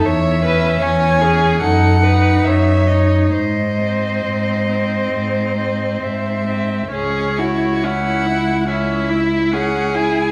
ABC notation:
X:1
M:4/4
L:1/8
Q:1/4=69
K:C#m
V:1 name="Violin"
e2 g2 f2 e d | d4- d d e2 | c2 f2 e2 f g |]
V:2 name="Violin"
c B c G A B c2 | ^B6- B z | G F E2 E2 G2 |]
V:3 name="Viola"
z C2 C D D2 D | z ^B,2 B,2 B,2 B, | C E C E C E C E |]
V:4 name="Cello" clef=bass
E,,2 E,,2 F,,2 F,,2 | G,,2 G,,2 G,,2 G,,2 | C,,8 |]